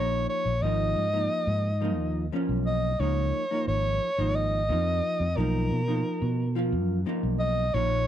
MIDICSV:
0, 0, Header, 1, 4, 480
1, 0, Start_track
1, 0, Tempo, 677966
1, 441, Time_signature, 7, 3, 24, 8
1, 5716, End_track
2, 0, Start_track
2, 0, Title_t, "Soprano saxophone"
2, 0, Program_c, 0, 64
2, 0, Note_on_c, 0, 73, 86
2, 185, Note_off_c, 0, 73, 0
2, 207, Note_on_c, 0, 73, 89
2, 441, Note_on_c, 0, 75, 93
2, 451, Note_off_c, 0, 73, 0
2, 1642, Note_off_c, 0, 75, 0
2, 1884, Note_on_c, 0, 75, 86
2, 2122, Note_on_c, 0, 73, 85
2, 2133, Note_off_c, 0, 75, 0
2, 2600, Note_off_c, 0, 73, 0
2, 2604, Note_on_c, 0, 73, 96
2, 3082, Note_on_c, 0, 75, 97
2, 3093, Note_off_c, 0, 73, 0
2, 3800, Note_on_c, 0, 70, 74
2, 3810, Note_off_c, 0, 75, 0
2, 4760, Note_off_c, 0, 70, 0
2, 5235, Note_on_c, 0, 75, 99
2, 5478, Note_on_c, 0, 73, 104
2, 5489, Note_off_c, 0, 75, 0
2, 5716, Note_off_c, 0, 73, 0
2, 5716, End_track
3, 0, Start_track
3, 0, Title_t, "Hollow-body jazz guitar"
3, 0, Program_c, 1, 26
3, 0, Note_on_c, 1, 53, 75
3, 0, Note_on_c, 1, 58, 64
3, 0, Note_on_c, 1, 63, 86
3, 359, Note_off_c, 1, 53, 0
3, 360, Note_off_c, 1, 58, 0
3, 362, Note_off_c, 1, 63, 0
3, 444, Note_on_c, 1, 53, 76
3, 451, Note_on_c, 1, 58, 63
3, 455, Note_on_c, 1, 63, 78
3, 742, Note_off_c, 1, 53, 0
3, 743, Note_off_c, 1, 58, 0
3, 743, Note_off_c, 1, 63, 0
3, 802, Note_on_c, 1, 53, 63
3, 804, Note_on_c, 1, 58, 57
3, 808, Note_on_c, 1, 63, 61
3, 1199, Note_off_c, 1, 53, 0
3, 1200, Note_off_c, 1, 58, 0
3, 1200, Note_off_c, 1, 63, 0
3, 1281, Note_on_c, 1, 53, 80
3, 1287, Note_on_c, 1, 58, 58
3, 1287, Note_on_c, 1, 63, 87
3, 1579, Note_off_c, 1, 53, 0
3, 1580, Note_off_c, 1, 58, 0
3, 1582, Note_off_c, 1, 63, 0
3, 1646, Note_on_c, 1, 53, 87
3, 1650, Note_on_c, 1, 61, 92
3, 1651, Note_on_c, 1, 58, 68
3, 2041, Note_off_c, 1, 53, 0
3, 2042, Note_off_c, 1, 58, 0
3, 2043, Note_off_c, 1, 61, 0
3, 2123, Note_on_c, 1, 63, 88
3, 2127, Note_on_c, 1, 58, 60
3, 2129, Note_on_c, 1, 53, 58
3, 2421, Note_off_c, 1, 53, 0
3, 2421, Note_off_c, 1, 58, 0
3, 2422, Note_off_c, 1, 63, 0
3, 2484, Note_on_c, 1, 63, 69
3, 2487, Note_on_c, 1, 58, 59
3, 2490, Note_on_c, 1, 53, 56
3, 2880, Note_off_c, 1, 53, 0
3, 2880, Note_off_c, 1, 58, 0
3, 2881, Note_off_c, 1, 63, 0
3, 2959, Note_on_c, 1, 53, 72
3, 2965, Note_on_c, 1, 58, 59
3, 2965, Note_on_c, 1, 63, 80
3, 3259, Note_off_c, 1, 53, 0
3, 3260, Note_off_c, 1, 58, 0
3, 3261, Note_off_c, 1, 63, 0
3, 3322, Note_on_c, 1, 53, 73
3, 3324, Note_on_c, 1, 58, 63
3, 3328, Note_on_c, 1, 63, 69
3, 3718, Note_off_c, 1, 53, 0
3, 3720, Note_off_c, 1, 58, 0
3, 3720, Note_off_c, 1, 63, 0
3, 3802, Note_on_c, 1, 53, 82
3, 3808, Note_on_c, 1, 63, 87
3, 3809, Note_on_c, 1, 58, 58
3, 4100, Note_off_c, 1, 53, 0
3, 4101, Note_off_c, 1, 58, 0
3, 4102, Note_off_c, 1, 63, 0
3, 4159, Note_on_c, 1, 53, 67
3, 4163, Note_on_c, 1, 63, 71
3, 4165, Note_on_c, 1, 58, 51
3, 4557, Note_off_c, 1, 53, 0
3, 4558, Note_off_c, 1, 58, 0
3, 4559, Note_off_c, 1, 63, 0
3, 4640, Note_on_c, 1, 53, 84
3, 4646, Note_on_c, 1, 58, 68
3, 4646, Note_on_c, 1, 65, 90
3, 4938, Note_off_c, 1, 53, 0
3, 4939, Note_off_c, 1, 58, 0
3, 4940, Note_off_c, 1, 65, 0
3, 4998, Note_on_c, 1, 53, 89
3, 5002, Note_on_c, 1, 58, 86
3, 5004, Note_on_c, 1, 63, 88
3, 5396, Note_off_c, 1, 53, 0
3, 5397, Note_off_c, 1, 58, 0
3, 5397, Note_off_c, 1, 63, 0
3, 5480, Note_on_c, 1, 63, 80
3, 5482, Note_on_c, 1, 58, 71
3, 5483, Note_on_c, 1, 53, 71
3, 5716, Note_off_c, 1, 53, 0
3, 5716, Note_off_c, 1, 58, 0
3, 5716, Note_off_c, 1, 63, 0
3, 5716, End_track
4, 0, Start_track
4, 0, Title_t, "Fretless electric bass"
4, 0, Program_c, 2, 35
4, 0, Note_on_c, 2, 34, 75
4, 177, Note_off_c, 2, 34, 0
4, 320, Note_on_c, 2, 34, 72
4, 429, Note_off_c, 2, 34, 0
4, 438, Note_on_c, 2, 32, 88
4, 657, Note_off_c, 2, 32, 0
4, 681, Note_on_c, 2, 44, 78
4, 899, Note_off_c, 2, 44, 0
4, 1040, Note_on_c, 2, 44, 82
4, 1403, Note_off_c, 2, 44, 0
4, 1403, Note_on_c, 2, 39, 80
4, 1620, Note_off_c, 2, 39, 0
4, 1761, Note_on_c, 2, 35, 70
4, 2093, Note_off_c, 2, 35, 0
4, 2119, Note_on_c, 2, 37, 75
4, 2338, Note_off_c, 2, 37, 0
4, 2601, Note_on_c, 2, 32, 76
4, 2819, Note_off_c, 2, 32, 0
4, 2961, Note_on_c, 2, 32, 72
4, 3320, Note_on_c, 2, 41, 80
4, 3330, Note_off_c, 2, 32, 0
4, 3538, Note_off_c, 2, 41, 0
4, 3680, Note_on_c, 2, 41, 69
4, 3789, Note_off_c, 2, 41, 0
4, 3799, Note_on_c, 2, 35, 90
4, 4017, Note_off_c, 2, 35, 0
4, 4042, Note_on_c, 2, 47, 82
4, 4259, Note_off_c, 2, 47, 0
4, 4401, Note_on_c, 2, 47, 83
4, 4759, Note_on_c, 2, 42, 84
4, 4770, Note_off_c, 2, 47, 0
4, 4977, Note_off_c, 2, 42, 0
4, 5119, Note_on_c, 2, 35, 76
4, 5451, Note_off_c, 2, 35, 0
4, 5480, Note_on_c, 2, 34, 83
4, 5696, Note_off_c, 2, 34, 0
4, 5716, End_track
0, 0, End_of_file